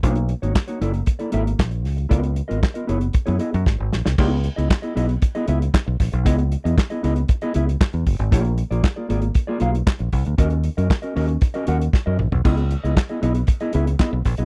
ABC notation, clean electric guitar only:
X:1
M:4/4
L:1/16
Q:1/4=116
K:C#dor
V:1 name="Clean electric guitar"
[A,DFc]2 z [A,DFc] z [A,DFc] [A,E=A=d] z2 [^A,E=Ad] [^A,E=Ae] z4 z | [B,^EAd]2 z [B,EAd] z [B,EAd] [B,=EGc] z2 [B,EGc] [B,EGd] z4 z | [B,EGd]2 z [B,EGd] z [B,EGd] [B,EGd] z2 [B,EGd] [B,EGe] z4 z | [B,EGd] z2 [B,EGd] z [B,EGd] [B,EGd] z2 [B,EGd] [B,EGe] z4 z |
[A,^EG=d]2 z [A,EGd] z [A,EGd] [A,EGd] z2 [A,EGd] [A,EG^e] z4 z | [CFAd] z2 [CFAd] z [CFAd] [CFAd] z2 [CFAd] [CFAf] z2 [CFAd] z2 | [B,EGd] z2 [B,EGd] z [B,EGd] [B,EGd] z2 [B,EGd] [B,EGe] z [B,EGd] z2 [B,EGd] |]